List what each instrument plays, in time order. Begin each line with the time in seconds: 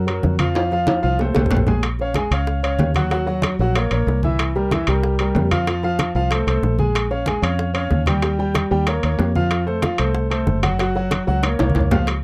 Already playing: fingered electric bass F#2
0.07 grand piano F#3 F#4 A#4, high bongo, high conga, high timbale
0.23 fingered electric bass F2, high bongo, low bongo, high conga
0.39 grand piano F3 F4 F5, high bongo, high conga, high timbale
0.55 grand piano F3 F4 F5, high bongo, high conga, high timbale
0.71 grand piano F3 F4 F5, high bongo, high conga
0.87 high bongo, high conga, high timbale
1.03 fingered electric bass C2, grand piano F3 F4 F5
1.19 grand piano A3 A4 C5, high bongo, high conga, low timbale
1.35 fingered electric bass C2, grand piano A3 A4 C5, high bongo, high conga, low timbale
1.46 low conga
1.51 fingered electric bass A#1, low bongo, low timbale
1.57 low conga
1.67 grand piano G#3 G#4 G#5, low bongo, low conga, low timbale
1.83 high bongo, high conga, high timbale
1.99 grand piano C#4 C#5 F5, high bongo, high conga
2.14 grand piano G#3 G#4 G#5, high bongo, high conga, high timbale
2.31 fingered electric bass C#2, grand piano C#4 C#5 F5, high conga, high timbale
2.47 high bongo, high conga
2.63 grand piano C#4 C#5 F5, high bongo, high conga, high timbale
2.79 fingered electric bass D#2, high bongo, low bongo, high conga, low timbale
2.95 grand piano F#3 F#4 F#5, high bongo, high conga, high timbale
3.10 grand piano F#3 F#4 F#5, high bongo, high conga, high timbale
3.27 grand piano F#3 F#4 F#5, high bongo, high conga
3.42 high bongo, high conga, high timbale
3.59 fingered electric bass A#1, grand piano F#3 F#4 F#5
3.75 grand piano A#3 A#4 C#5, high bongo, high conga, high timbale
3.91 fingered electric bass A#1, grand piano A#3 A#4 C#5, high bongo, high conga, high timbale
4.07 fingered electric bass C2, high bongo, low bongo, high conga
4.23 grand piano E3 E4 E5, high bongo, high conga
4.39 high bongo, high conga, high timbale
4.56 grand piano G3 G4 A#4, high bongo, high conga
4.71 grand piano E3 E4 E5, high bongo, high conga, high timbale
4.87 fingered electric bass C2, grand piano G3 G4 A#4, high conga, high timbale
5.04 high bongo, high conga
5.19 grand piano G3 G4 A#4, high bongo, high conga, high timbale
5.35 fingered electric bass F2, high bongo, low bongo, high conga, low timbale
5.51 grand piano F3 F4 F5, high bongo, high conga, high timbale
5.67 grand piano F3 F4 F5, high bongo, high conga, high timbale
5.83 grand piano F3 F4 F5, high bongo, high conga
5.99 high bongo, high conga, high timbale
6.15 fingered electric bass C2, grand piano F3 F4 F5
6.31 grand piano A3 A4 C5, high bongo, high conga, high timbale
6.47 fingered electric bass C2, grand piano A3 A4 C5, high bongo, high conga, high timbale
6.63 fingered electric bass A#1, high bongo, low bongo, high conga
6.79 grand piano G#3 G#4 G#5, high bongo, high conga
6.95 high bongo, high conga, high timbale
7.11 grand piano C#4 C#5 F5, high bongo, high conga
7.26 grand piano G#3 G#4 G#5, high bongo, high conga, high timbale
7.42 fingered electric bass F2, grand piano C#4 C#5 F5, high conga, high timbale
7.59 high bongo, high conga
7.74 grand piano C#4 C#5 F5, high bongo, high conga, high timbale
7.91 fingered electric bass D#2, high bongo, low bongo, high conga
8.06 grand piano G3 G4 G5, high bongo, high conga, high timbale
8.22 grand piano G3 G4 G5, high bongo, high timbale
8.39 grand piano G3 G4 G5, high bongo, high conga
8.55 high bongo, high conga, high timbale
8.71 fingered electric bass D#2, grand piano G3 G4 G5
8.87 grand piano A#3 A#4 C#5, high bongo, high conga, high timbale
9.03 fingered electric bass D#2, grand piano A#3 A#4 C#5, high bongo, high conga, high timbale
9.19 fingered electric bass F2, high bongo, low bongo, high conga, low timbale
9.35 grand piano F3 F4 F5, high bongo, high conga
9.51 high bongo, high timbale
9.66 grand piano A3 A4 C5, high bongo, high conga
9.82 grand piano F3 F4 F5, high bongo, high conga, high timbale
9.98 fingered electric bass C2, grand piano A3 A4 C5, high conga, high timbale
10.15 high bongo, high conga
10.30 grand piano A3 A4 C5, high bongo, high conga, high timbale
10.47 fingered electric bass F#1, high bongo, low bongo, high conga
10.63 grand piano F#3 F#4 F#5, high bongo, high conga, high timbale
10.79 grand piano F#3 F#4 F#5, high bongo, high conga, high timbale
10.95 grand piano F#3 F#4 F#5, high bongo, high conga
11.11 high bongo, high conga, high timbale
11.27 fingered electric bass C#2, grand piano F#3 F#4 F#5
11.43 grand piano A#3 A#4 C#5, low bongo, high conga, high timbale
11.59 fingered electric bass C2, grand piano A#3 A#4 C#5, low bongo, high conga, high timbale
11.70 high conga
11.75 fingered electric bass C#2, low bongo, high timbale
11.80 low conga
11.91 grand piano F3 F4 F5, low bongo, low conga, low timbale
12.07 high bongo, high conga, high timbale